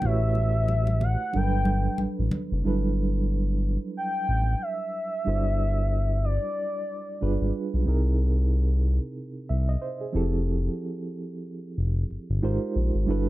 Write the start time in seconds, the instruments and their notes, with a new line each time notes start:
0.02 analog synth bass A1, reed electric piano A3 E4 F#4 G4, soft synth lead E5, muted conga, low conga
0.06 reed electric piano B4 C#5
0.35 high conga
0.68 muted conga, high conga
0.87 high conga
1.01 soft synth lead F#5, muted conga, low conga
1.33 analog synth bass G1, reed electric piano F#3 G3 D4 A4, soft synth lead G5, muted conga
1.37 reed electric piano A#4
1.43 reed electric piano B4
1.65 muted conga, high conga
1.98 analog synth bass A1, muted conga, high conga
2.19 analog synth bass A1
2.31 muted conga, high conga, low conga
2.52 analog synth bass F#1
2.63 analog synth bass G1, reed electric piano F#3 G3 D4 E4 A4
2.67 reed electric piano B4
3.97 soft synth lead G5
4.29 analog synth bass A1
4.62 soft synth lead E5
5.25 analog synth bass G1, reed electric piano G3 D4 E4 F#4 A4
5.29 reed electric piano C5
5.35 reed electric piano D5
6.25 soft synth lead D5
7.21 analog synth bass G1, reed electric piano G3 D4 F4 G#4 B4
7.41 analog synth bass G#1
7.74 analog synth bass B1
7.85 analog synth bass C2, reed electric piano C3 C4 D#4 E4 G#4
7.89 reed electric piano A#4
9.49 analog synth bass C2, reed electric piano E5
9.69 reed electric piano D#5
9.82 reed electric piano C5
10.01 reed electric piano G#4
10.12 analog synth bass F1, reed electric piano F3 C4 E4 G4 A4
11.78 analog synth bass F1
12.11 analog synth bass G1
12.30 analog synth bass G1
12.42 analog synth bass G#1, reed electric piano G#3 D#4 F4 G4 A#4 C5
12.76 analog synth bass A#1
12.95 analog synth bass G#1
13.06 analog synth bass G1, reed electric piano G3 D4 E4 F#4 A4
13.11 reed electric piano B4